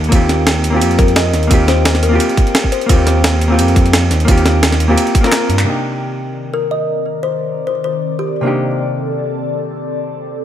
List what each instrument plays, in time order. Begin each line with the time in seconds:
Already playing: analog synth bass D#2
0.04 closed hi-hat
0.09 analog synth bass D#2, hollow-body jazz guitar A#3 C4, kick, closed hi-hat, ride bell
0.13 hollow-body jazz guitar F4 G4
0.29 snare, closed hi-hat
0.47 snare, closed hi-hat, ride bell
0.64 closed hi-hat
0.70 hollow-body jazz guitar A#3 C4
0.74 hollow-body jazz guitar F4 G4
0.81 analog synth bass F2, closed hi-hat, ride bell
0.91 closed hi-hat
0.99 kalimba A#4, kick, closed hi-hat
1.08 closed hi-hat
1.16 kalimba D#5, snare, closed hi-hat, ride bell
1.33 analog synth bass D#2, snare, closed hi-hat
1.43 closed hi-hat
1.47 analog synth bass D#2, hollow-body jazz guitar A#3 C4, kick, closed hi-hat, ride bell
1.52 hollow-body jazz guitar F4 G4
1.68 kalimba C5, snare, closed hi-hat
1.85 snare, closed hi-hat, ride bell
1.95 snare
2.03 kalimba A#4, closed hi-hat
2.09 hollow-body jazz guitar A#3 C4
2.13 hollow-body jazz guitar F4 G4
2.20 closed hi-hat, ride bell
2.29 closed hi-hat
2.37 kick, closed hi-hat
2.47 closed hi-hat
2.55 snare, closed hi-hat, ride bell
2.64 kick
2.72 kalimba C5, closed hi-hat
2.81 closed hi-hat
2.86 analog synth bass D#2, hollow-body jazz guitar A#3 C4, kick, closed hi-hat, ride bell
2.91 hollow-body jazz guitar F4 G4
3.07 snare, closed hi-hat
3.24 snare, closed hi-hat, ride bell
3.41 closed hi-hat
3.48 hollow-body jazz guitar A#3 C4
3.52 hollow-body jazz guitar F4 G4
3.59 analog synth bass F2, closed hi-hat, ride bell
3.68 closed hi-hat
3.76 kick, closed hi-hat
3.86 closed hi-hat
3.93 snare, closed hi-hat, ride bell
4.11 analog synth bass D#2, snare, closed hi-hat
4.20 closed hi-hat
4.25 analog synth bass D#2, hollow-body jazz guitar A#3 C4, kick, closed hi-hat, ride bell
4.29 hollow-body jazz guitar F4 G4
4.38 closed hi-hat
4.46 snare, closed hi-hat
4.63 snare, closed hi-hat, ride bell
4.72 snare
4.80 closed hi-hat
4.88 hollow-body jazz guitar A#3 C4 F4 G4
4.98 closed hi-hat, ride bell
5.07 closed hi-hat
5.15 kick, closed hi-hat
5.21 hollow-body jazz guitar A#3 C4, snare, closed hi-hat
5.25 hollow-body jazz guitar F4 A#4
5.32 snare, clap, closed hi-hat, ride bell
5.49 analog synth bass G2, closed hi-hat
5.59 clap, closed hi-hat
5.64 hollow-body jazz guitar C3 A#3 D4, analog synth pad D#3 C4 A#4 D5
5.68 hollow-body jazz guitar D#4 G4
6.54 kalimba A#4
6.71 kalimba D#5
7.23 kalimba C5
7.67 kalimba C5
7.84 kalimba C5
8.19 kalimba G4
8.41 hollow-body jazz guitar C3 A#3 D4, analog synth pad A4
8.46 hollow-body jazz guitar D#4 G4